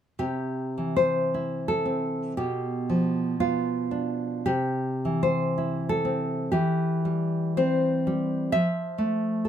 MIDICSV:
0, 0, Header, 1, 2, 480
1, 0, Start_track
1, 0, Key_signature, 0, "major"
1, 0, Tempo, 1149425
1, 81, Time_signature, 2, 2, 24, 8
1, 559, Tempo, 1030928
1, 1519, Tempo, 1083032
1, 2479, Tempo, 953895
1, 2959, Tempo, 1052632
1, 3439, Tempo, 937500
1, 4419, End_track
2, 0, Start_track
2, 0, Title_t, "Nylon-string guitar"
2, 0, Program_c, 0, 24
2, 79, Note_on_c, 0, 48, 44
2, 80, Note_on_c, 0, 67, 61
2, 324, Note_on_c, 0, 52, 37
2, 394, Note_off_c, 0, 67, 0
2, 403, Note_on_c, 0, 72, 62
2, 561, Note_on_c, 0, 64, 35
2, 706, Note_off_c, 0, 72, 0
2, 719, Note_on_c, 0, 69, 58
2, 799, Note_on_c, 0, 60, 34
2, 1024, Note_off_c, 0, 48, 0
2, 1029, Note_off_c, 0, 69, 0
2, 1040, Note_on_c, 0, 67, 52
2, 1042, Note_off_c, 0, 52, 0
2, 1042, Note_off_c, 0, 60, 0
2, 1044, Note_off_c, 0, 64, 0
2, 1044, Note_on_c, 0, 47, 46
2, 1284, Note_on_c, 0, 53, 35
2, 1500, Note_off_c, 0, 67, 0
2, 1519, Note_on_c, 0, 59, 33
2, 1520, Note_on_c, 0, 65, 59
2, 1746, Note_on_c, 0, 62, 33
2, 1975, Note_off_c, 0, 65, 0
2, 1976, Note_off_c, 0, 47, 0
2, 1985, Note_off_c, 0, 59, 0
2, 1987, Note_on_c, 0, 67, 70
2, 1991, Note_on_c, 0, 48, 51
2, 1992, Note_off_c, 0, 62, 0
2, 1994, Note_off_c, 0, 53, 0
2, 2250, Note_on_c, 0, 52, 40
2, 2314, Note_off_c, 0, 67, 0
2, 2329, Note_on_c, 0, 72, 65
2, 2484, Note_on_c, 0, 64, 40
2, 2628, Note_off_c, 0, 72, 0
2, 2643, Note_on_c, 0, 69, 70
2, 2722, Note_on_c, 0, 60, 40
2, 2940, Note_off_c, 0, 48, 0
2, 2950, Note_off_c, 0, 69, 0
2, 2955, Note_off_c, 0, 52, 0
2, 2955, Note_off_c, 0, 64, 0
2, 2957, Note_on_c, 0, 67, 62
2, 2961, Note_on_c, 0, 52, 57
2, 2962, Note_off_c, 0, 60, 0
2, 3201, Note_on_c, 0, 55, 39
2, 3421, Note_off_c, 0, 67, 0
2, 3438, Note_on_c, 0, 72, 70
2, 3441, Note_on_c, 0, 60, 42
2, 3687, Note_off_c, 0, 55, 0
2, 3693, Note_on_c, 0, 55, 45
2, 3906, Note_off_c, 0, 72, 0
2, 3907, Note_off_c, 0, 52, 0
2, 3925, Note_on_c, 0, 76, 87
2, 3927, Note_off_c, 0, 60, 0
2, 3929, Note_off_c, 0, 55, 0
2, 3929, Note_on_c, 0, 53, 61
2, 4161, Note_on_c, 0, 57, 45
2, 4399, Note_on_c, 0, 69, 39
2, 4419, Note_off_c, 0, 53, 0
2, 4419, Note_off_c, 0, 57, 0
2, 4419, Note_off_c, 0, 69, 0
2, 4419, Note_off_c, 0, 76, 0
2, 4419, End_track
0, 0, End_of_file